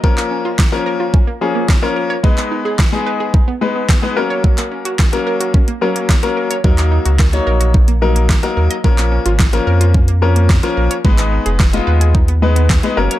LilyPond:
<<
  \new Staff \with { instrumentName = "Synth arpeggio sound" } { \time 4/4 \key aes \dorian \tempo 4 = 109 f16 bes16 des'16 f'16 bes'16 r16 bes'16 f'16 des'16 bes16 f16 bes16 r16 f'16 bes'16 des''16 | aes16 ces'16 ees'16 aes'16 ces''16 r16 ces''16 aes'16 ees'16 ces'16 aes16 ces'16 r16 aes'16 bes'16 des''16 | ges16 bes16 des'16 ges'16 bes'16 r16 bes'16 ges'16 des'16 bes16 ges16 bes16 r16 ges'16 bes'16 des''16 | ges16 bes16 ees'16 ges'16 bes'16 r16 bes'16 ges'16 ees'16 bes16 ges16 bes16 r16 ges'16 bes'16 ees''16 |
f16 bes16 des'16 f'16 bes'16 r16 bes'16 f'16 des'16 bes16 f16 bes16 r16 f'16 bes'16 des''16 | aes16 ces'16 ees'16 aes'16 ces''16 r16 ces''16 aes'16 ees'16 ces'16 aes16 ces'16 r16 aes'16 bes'16 des''16 | }
  \new Staff \with { instrumentName = "Grand piano" } { \time 4/4 \key aes \dorian <f bes des' bes'>4 r16 <f bes des' bes'>4 r16 <f bes des' aes'>8 r16 <f bes des' bes'>8 r16 | <aes ces' ees' ces''>4 r16 <aes ces' ees' aes'>4 r16 <aes ces' ees' ces''>8 r16 <aes ces' ees' ces''>16 <ges bes des' bes'>8~ | <ges bes des' bes'>4 r16 <ges bes des' bes'>4 r16 <ges bes des' bes'>8 r16 <ges bes des' bes'>8 r16 | <ges bes ees' bes'>4 r16 <ges bes ees' des''>4 r16 <ges bes ees' bes'>8 r16 <ges bes ees' bes'>8 r16 |
<f bes des' bes'>4 r16 <f bes des' bes'>4 r16 <f bes des' bes'>8 r16 <f bes des' bes'>8 r16 | <aes ces' ees' ces''>4 r16 <aes ces' ees' f'>4 r16 <aes ces' ees' ces''>8 r16 <aes ces' ees' ces''>16 <ges bes des' bes'>8 | }
  \new Staff \with { instrumentName = "Sub bass" } { \clef bass \time 4/4 \key aes \dorian r1 | r1 | r1 | ees,8. des,8. bes,,2 ees,16 r16 |
bes,,8. aes,,8. f,2 bes,,16 r16 | aes,,8. f,,8. ees,2 ges,,16 r16 | }
  \new DrumStaff \with { instrumentName = "Drums" } \drummode { \time 4/4 bd16 hc8. <hc bd sn>4 bd4 <hc bd sn>4 | bd16 hc8. <hc bd sn>4 bd4 <hc bd sn>4 | bd16 <hc hh>8 hh16 <hc bd sn>16 hh8 hh16 bd16 hh8 hh16 <hc bd sn>16 hh8 hh16 | bd16 <hc hh>8 hh16 <hc bd sn>16 hh8 hh16 bd16 hh8 hh16 <hc bd sn>16 hh8 hh16 |
bd16 <hc hh>8 hh16 <hc bd sn>16 hh8 hh16 bd16 hh8 hh16 <hc bd sn>16 hh8 hh16 | bd16 <hc hh>8 hh16 <hc bd sn>16 hh8 hh16 bd16 hh8 hh16 <hc bd sn>16 hh8 hh16 | }
>>